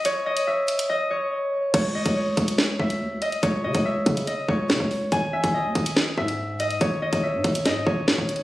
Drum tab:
CC |------------------------------------------------|x-----------------------------------------------|------------------------------------------------|------------------------------------------------|
HH |x--------x--------x--x--------------------------|x--------x--------x--x-----------x--------x--x--|x--------x--------x--x--x-----------------o-----|x--------x--------x--x-----------x--------x--x--|
SD |------------------------------------------------|------------------------o-----------------------|------------------------------------o-----------|------------------------o-----------------------|
BD |------------------------------------------------|o--------o--------o-----------o-----------------|o--------o--------o-----------o--------o--------|o--------o--------o-----------o-----------------|

CC |------------------------------------------------|
HH |x--------x--------x--x--x-----------------x-x---|
SD |------------------------o-----------o-----------|
BD |o--------o--------o-----------o--------o--------|